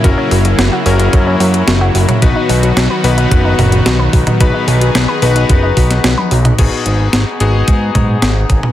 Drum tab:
CC |----------------|----------------|----------------|x---------------|
HH |x-oxx-oxx-oxx-ox|x-oxx-oxx-oxx-ox|x-oxx-oxx-oxx-ox|x-x-x-x-x-x-x-x-|
SD |----o-------o---|----o-------o---|----o------oo---|----o-------o---|
T1 |----------------|----------------|------------oo--|----------------|
T2 |---------------o|----------o----o|---------------o|----------o----o|
BD |o-------o-------|o-------o-----o-|o-------o-o-----|o-------o-o---o-|